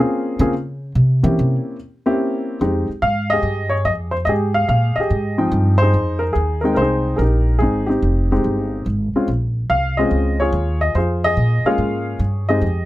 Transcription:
0.00 0.37 A#3 medium
0.00 0.38 C4 medium
0.00 0.38 C#4 medium
0.00 0.38 F4 medium
0.00 0.38 G#4 medium
0.39 0.91 C#3 medium
0.39 0.53 A#3 medium
0.39 0.53 C4 medium
0.39 0.53 C#4 medium
0.39 0.53 F4 medium
0.39 0.53 G#4 medium
0.95 1.23 C3 medium
1.23 1.37 E3 loud
1.23 1.76 A#3 soft
1.23 1.76 C4 soft
1.23 1.76 C#4 soft
1.23 1.76 E4 soft
1.23 1.76 G4 medium
1.39 1.55 C3 medium
2.06 2.59 A#3 medium
2.06 2.59 C4 medium
2.06 2.59 C#4 medium
2.06 2.59 E4 medium
2.06 2.59 G4 medium
2.61 2.87 F2 medium
2.61 2.86 G#3 medium
2.61 2.86 C4 medium
2.61 2.87 D#4 medium
2.61 2.87 G4 medium
2.89 muted upright bass stroke soft
3.02 3.42 G#2 medium
3.02 3.32 F5 loud
3.30 4.12 G4 medium
3.30 4.11 G#4 medium
3.30 3.73 D#5 loud
3.43 3.84 G2 medium
3.70 3.85 C#5 medium
3.85 4.26 F2 medium
3.85 3.92 D#5 medium
4.11 4.16 C5 medium
4.25 4.68 G#2 medium
4.25 4.98 G4 medium
4.25 4.99 G#4 medium
4.25 4.32 D#5 medium
4.54 4.67 F5 medium
4.69 4.95 A#2 medium
4.69 4.98 F5 medium
4.96 5.48 D#5 medium
4.96 muted upright bass stroke soft
5.00 5.78 G4 medium
5.00 5.78 G#4 medium
5.10 5.51 G#2 medium
5.38 5.91 F3 medium
5.38 5.91 C4 medium
5.38 5.81 D#4 medium
5.38 5.91 G5 medium
5.52 5.93 G2 medium
5.78 6.22 C5 loud
5.82 6.61 D#4 medium
5.82 6.31 G#4 medium
5.94 6.35 F2 medium
6.19 6.35 A#4 medium
6.33 6.76 D#2 medium
6.33 6.61 G#4 medium
6.61 7.17 G#3 medium
6.61 7.17 C4 medium
6.61 6.80 D#4 medium
6.61 6.72 A#4 medium
6.65 7.17 G5 medium
6.74 7.18 C2 medium
6.74 6.79 A#4 medium
6.74 7.16 C5 medium
6.81 7.20 D#4 medium
6.81 7.15 G#4 medium
7.16 7.60 A#1 medium
7.16 7.20 G#4 medium
7.16 7.62 A#4 medium
7.22 7.60 D#4 soft
7.22 7.85 G4 medium
7.59 8.01 G#1 medium
7.59 7.88 C4 medium
7.59 7.88 D#4 medium
7.59 7.86 G#4 medium
7.86 8.31 C4 medium
7.86 8.31 D#4 soft
7.86 8.30 G4 medium
8.02 8.43 F1 medium
8.32 8.84 G#3 medium
8.32 8.84 C4 medium
8.32 8.84 D#4 medium
8.32 8.84 G4 medium
8.44 8.85 G1 medium
8.86 9.12 G#1 medium
9.13 9.27 G#3 medium
9.13 9.27 C4 medium
9.13 9.28 C#4 medium
9.13 9.28 F4 medium
9.13 muted upright bass stroke soft
9.28 9.68 A#1 medium
9.69 10.10 C2 medium
9.69 9.96 F5 loud
9.97 10.51 G#3 medium
9.97 10.51 C4 medium
9.97 10.51 C#4 medium
9.97 10.39 F4 medium
9.97 10.40 G#4 medium
9.97 10.36 D#5 medium
10.11 10.52 C#2 medium
10.40 10.96 F4 medium
10.40 10.96 G#4 medium
10.40 10.78 C#5 medium
10.53 10.93 D#2 medium
10.81 10.94 D#5 medium
10.95 11.35 F2 medium
10.95 11.65 F4 medium
10.95 11.24 G#4 medium
10.95 11.24 C5 medium
11.24 11.66 G#4 medium
11.24 11.67 D#5 loud
11.37 11.63 A#2 medium
11.64 12.18 G#3 medium
11.64 12.18 A#3 medium
11.64 12.18 C#4 medium
11.64 12.18 F4 medium
11.64 12.45 G#4 medium
11.64 12.45 C#5 medium
11.64 12.17 F5 medium
11.64 muted upright bass stroke soft
11.78 12.19 G#2 medium
12.19 12.60 G2 medium
12.49 12.61 G#3 medium
12.49 12.61 C4 medium
12.49 12.61 D#4 medium
12.49 12.85 G4 medium
12.49 12.85 G#4 medium
12.49 12.85 D#5 medium
12.61 12.85 F2 medium

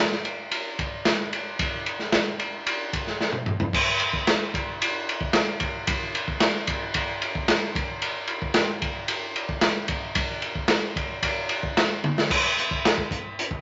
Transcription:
0.12 snare soft
0.25 ride medium
0.51 ride medium
0.79 kick medium
0.79 ride medium
1.05 snare loud
1.05 ride medium
1.33 ride medium
1.59 kick loud
1.59 ride medium
1.86 ride medium
1.99 snare soft
2.12 snare loud
2.12 ride medium
2.39 ride medium
2.67 ride medium
2.93 kick medium
2.93 ride medium
3.07 snare soft
3.21 snare soft
3.33 mid tom medium
3.46 mid tom medium
3.60 floor tom medium
3.73 kick loud
3.73 crash loud
4.00 ride medium
4.13 kick medium
4.27 snare loud
4.27 ride medium
4.54 kick medium
4.54 ride medium
4.82 ride medium
5.09 ride medium
5.21 kick medium
5.33 snare loud
5.33 ride medium
5.60 kick medium
5.60 ride medium
5.87 kick loud
5.87 ride loud
6.15 ride medium
6.28 kick medium
6.40 snare loud
6.40 ride medium
6.67 kick medium
6.67 ride medium
6.94 kick medium
6.94 ride medium
7.22 ride medium
7.35 kick medium
7.48 snare loud
7.48 ride medium
7.75 kick loud
7.75 ride medium
8.02 ride medium
8.28 ride medium
8.42 kick medium
8.54 snare loud
8.54 ride medium
8.82 kick medium
8.82 ride medium
9.08 ride medium
9.36 ride medium
9.49 kick medium
9.61 snare loud
9.61 ride medium
9.88 kick medium
9.88 ride medium
10.15 kick loud
10.15 ride medium
10.42 ride medium
10.55 kick medium
10.68 snare loud
10.68 ride medium
10.96 kick medium
10.96 ride medium
11.23 kick medium
11.23 ride medium
11.49 ride medium
11.63 kick medium
11.77 snare loud
11.77 ride medium
12.04 high tom medium
12.18 snare medium
12.30 kick loud
12.30 crash loud
12.59 closed hi-hat medium
12.71 kick medium
12.85 snare loud
12.85 closed hi-hat medium
12.98 kick medium
13.11 kick medium
13.11 closed hi-hat medium
13.39 closed hi-hat loud
13.51 kick medium

